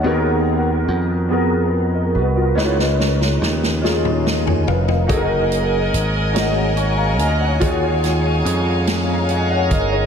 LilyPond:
<<
  \new Staff \with { instrumentName = "String section" } { \time 6/8 \key fis \major \tempo 4. = 48 << { r2. | r2. | gis''2.~ | gis''2. | } \\ { r2. | r2. | <ais' dis''>2. | <cis'' eis''>2. | } >> }
  \new Staff \with { instrumentName = "Grand piano" } { \time 6/8 \key fis \major << { <cis'' fis''>16 r2 <ais' dis''>16 <fis' b'>16 <eis' ais'>16~ | <eis' ais'>16 r4. r16 <ais' dis''>16 <dis'' gis''>16 <b' eis''>16 <ais' dis''>16~ | <ais' dis''>16 r4. r16 <gis'' cis'''>16 <eis'' ais''>16 <dis'' gis''>16 <cis'' fis''>16~ | <cis'' fis''>16 r4. <eis'' ais''>16 <dis'' gis''>16 <cis'' fis''>16 <ais' dis''>16 <gis' cis''>16 | } \\ { <dis b fis' gis' ais'>4. <b fis' gis' ais'>4. | <cis cis' dis' e' eis' b'>4. <cis' dis' eis' gis'>4. | <dis' fis' gis' a' ais'>4. <dis' fis' gis' cis''>4. | <dis eis' fis' gis' cis''>4. r4. | } >> }
  \new Staff \with { instrumentName = "Tonewheel organ" } { \time 6/8 \key fis \major << { r2. | r2. | r2 <gis' cis''>8 <eis' ais'>16 <cis' fis'>16~ | <cis' fis'>16 r4. r16 <cis'' fis''>16 <ais' eis''>8 <ais' dis''>16 | } \\ { r2. | r2. | <fis ais dis' gis'>2. | <eis gis cis' dis' gis'>2. | } >> }
  \new Staff \with { instrumentName = "Slap bass" } { \clef bass \time 6/8 \key fis \major dis,4 eis,4. bis,,8 | cis,4 dis,4. eis,,8 | fis,,4 gis,,4. d,8 | dis,4 eis,4. g,,8 | }
  \new DrumStaff \with { instrumentName = "Drums" } \drummode { \time 6/8 r4. r4. | sn16 sn16 sn16 sn16 sn16 sn16 sn16 toml16 sn16 tomfh16 tomfh16 tomfh16 | <hh bd>8 hh8 hh8 <hh sn>8 hh8 hh8 | <hh bd>8 <hh sn>8 hh8 <hh sn>8 hh8 <hh bd>8 | }
>>